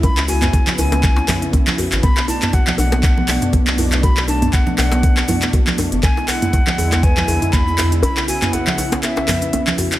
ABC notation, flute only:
X:1
M:4/4
L:1/16
Q:"Swing 16ths" 1/4=120
K:Bdor
V:1 name="Flute"
b2 g4 g6 z4 | b2 a2 f2 f6 z4 | b2 a2 f2 f6 z4 | g2 f6 g4 b3 z |
b2 g2 f4 e6 z2 |]